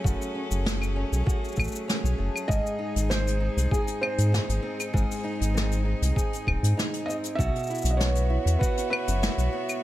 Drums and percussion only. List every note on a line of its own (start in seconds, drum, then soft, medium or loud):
0.04 kick loud
0.04 cabasa medium
0.22 cabasa soft
0.51 cabasa medium
0.66 snare medium
0.66 cabasa medium
0.82 cabasa soft
0.82 claves medium
1.13 cabasa medium
1.27 kick loud
1.27 cabasa medium
1.45 cabasa soft
1.48 cabasa soft
1.52 cabasa soft
1.56 kick medium
1.56 cabasa soft
1.56 claves medium
1.60 cabasa soft
1.64 cabasa soft
1.68 cabasa soft
1.72 cabasa soft
1.75 cabasa medium
1.89 snare medium
1.89 cabasa medium
2.05 cabasa soft
2.36 cabasa medium
2.36 claves medium
2.49 kick loud
2.49 cabasa medium
2.66 cabasa soft
2.96 closed hi-hat medium
2.96 cabasa medium
3.11 snare medium
3.11 cabasa medium
3.27 closed hi-hat medium
3.27 cabasa soft
3.58 closed hi-hat medium
3.58 cabasa medium
3.71 kick loud
3.71 cabasa medium
3.88 closed hi-hat medium
3.88 cabasa soft
4.03 claves medium
4.18 closed hi-hat medium
4.18 cabasa medium
4.34 snare loud
4.34 cabasa medium
4.49 closed hi-hat medium
4.49 cabasa soft
4.79 closed hi-hat medium
4.79 cabasa medium
4.79 claves medium
4.94 kick loud
4.94 cabasa medium
5.11 closed hi-hat soft
5.11 cabasa soft
5.16 closed hi-hat soft
5.19 closed hi-hat soft
5.23 closed hi-hat soft
5.27 closed hi-hat soft
5.35 closed hi-hat soft
5.38 closed hi-hat soft
5.41 closed hi-hat medium
5.41 cabasa medium
5.57 snare medium
5.57 cabasa medium
5.71 closed hi-hat medium
5.71 cabasa soft
6.02 closed hi-hat medium
6.02 cabasa medium
6.16 kick loud
6.16 cabasa medium
6.33 closed hi-hat medium
6.33 cabasa soft
6.47 kick medium
6.47 claves medium
6.64 closed hi-hat medium
6.64 cabasa medium
6.79 snare loud
6.79 cabasa medium
6.93 closed hi-hat soft
7.10 cabasa soft
7.23 closed hi-hat medium
7.23 cabasa medium
7.39 kick loud
7.39 cabasa medium
7.55 closed hi-hat soft
7.55 cabasa soft
7.59 cabasa soft
7.63 cabasa soft
7.67 cabasa soft
7.70 cabasa soft
7.75 cabasa soft
7.78 cabasa soft
7.82 cabasa soft
7.85 closed hi-hat medium
7.85 cabasa medium
8.00 snare loud
8.00 cabasa medium
8.15 closed hi-hat medium
8.15 cabasa soft
8.47 closed hi-hat medium
8.47 cabasa medium
8.61 kick loud
8.61 cabasa medium
8.77 closed hi-hat medium
8.77 cabasa soft
8.93 claves medium
9.08 closed hi-hat medium
9.08 cabasa medium
9.23 snare medium
9.23 cabasa medium
9.38 closed hi-hat medium
9.38 cabasa medium
9.69 cabasa medium
9.69 claves medium